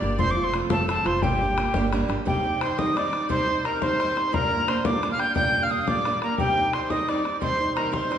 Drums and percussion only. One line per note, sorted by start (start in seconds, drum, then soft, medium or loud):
0.19 bodhran medium
0.28 bodhran soft
0.37 bodhran soft
0.54 bodhran medium
0.70 bodhran loud
0.89 bodhran medium
1.06 bodhran medium
1.22 bodhran medium
1.32 bodhran soft
1.41 bodhran soft
1.58 bodhran medium
1.74 bodhran loud
1.93 bodhran medium
2.10 bodhran medium
2.27 bodhran medium
2.45 bodhran soft
2.61 bodhran medium
2.70 bodhran soft
2.79 bodhran medium
2.97 bodhran medium
3.13 bodhran medium
3.30 bodhran medium
3.48 bodhran soft
3.65 bodhran medium
3.73 bodhran soft
3.82 bodhran medium
4.00 bodhran medium
4.17 bodhran medium
4.34 bodhran medium
4.52 bodhran soft
4.68 bodhran medium
4.77 bodhran soft
4.85 bodhran loud
5.03 bodhran medium
5.20 bodhran medium
5.36 bodhran medium
5.54 bodhran soft
5.79 bodhran soft
5.88 bodhran medium
6.05 bodhran medium
6.22 bodhran medium
6.38 bodhran medium
6.57 bodhran soft
6.73 bodhran medium
6.82 bodhran soft
6.90 bodhran medium
7.09 bodhran medium
7.25 bodhran soft
7.42 bodhran medium
7.60 bodhran soft
7.77 bodhran medium
7.85 bodhran soft
7.94 bodhran medium
8.12 bodhran soft